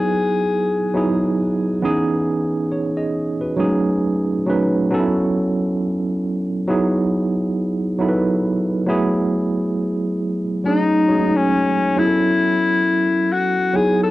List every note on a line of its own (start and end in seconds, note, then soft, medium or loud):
0.00 0.78 F#3 medium
0.00 0.79 B3 medium
0.00 0.79 D#4 medium
0.00 0.80 E4 medium
0.00 0.80 G#4 medium
0.00 1.39 G#4 medium
0.94 1.82 F#3 medium
0.94 1.81 B3 medium
0.94 1.83 D#4 medium
0.94 1.83 E4 medium
0.94 1.83 G#4 medium
1.82 3.37 E3 medium
1.82 3.37 B3 medium
1.82 3.38 C#4 medium
1.82 3.38 D#4 medium
1.82 2.71 G#4 loud
2.72 2.96 G#4 soft
2.72 2.96 C#5 medium
2.97 3.39 G#4 medium
2.97 3.39 D#5 medium
3.41 3.83 F#4 soft
3.41 3.83 B4 medium
3.56 4.35 F#3 medium
3.56 3.66 G#3 medium
3.56 4.36 C#4 medium
3.56 4.37 D#4 medium
3.56 4.37 G#4 medium
3.64 4.39 A3 medium
4.46 4.89 F#3 medium
4.46 4.91 A3 medium
4.46 4.91 C#4 medium
4.46 4.92 D#4 medium
4.46 4.92 B4 medium
4.91 6.46 F#3 medium
4.91 6.46 B3 medium
4.91 6.47 C#4 medium
4.91 5.00 D#4 medium
4.91 6.48 A4 loud
4.99 6.50 E4 medium
6.67 7.84 F#3 medium
6.67 7.85 B3 medium
6.67 7.85 D#4 medium
6.67 7.86 E4 medium
6.67 7.86 G#4 medium
7.99 8.85 F#3 medium
7.99 8.87 B3 medium
7.99 8.88 D#4 medium
7.99 8.88 E4 medium
7.99 8.08 A4 medium
8.09 8.92 B4 medium
8.86 10.42 F#3 medium
8.86 10.42 A3 medium
8.86 10.43 B3 medium
8.86 10.43 E4 medium
8.86 10.44 G#4 loud
10.64 11.03 F#3 medium
10.64 11.03 A3 medium
10.64 11.04 C#4 medium
10.64 11.38 D#4 medium
10.64 11.04 D#4 medium
10.64 11.05 G#4 medium
11.08 11.95 F#3 medium
11.08 11.16 G#3 soft
11.08 11.96 C#4 medium
11.08 11.98 D#4 medium
11.08 11.98 G#4 medium
11.15 12.00 A3 medium
11.36 12.00 C#4 medium
11.96 13.52 F#3 medium
11.96 13.52 B3 medium
11.96 13.52 C#4 medium
11.96 13.34 E4 loud
11.96 13.53 E4 medium
11.96 12.06 G#4 medium
12.06 13.56 A4 medium
13.33 13.78 F#4 medium
13.73 14.11 F#3 medium
13.73 14.11 B3 medium
13.73 14.11 D#4 medium
13.73 14.11 E4 medium
13.73 14.01 G#4 medium
13.73 14.11 G#4 medium
14.03 14.11 A4 medium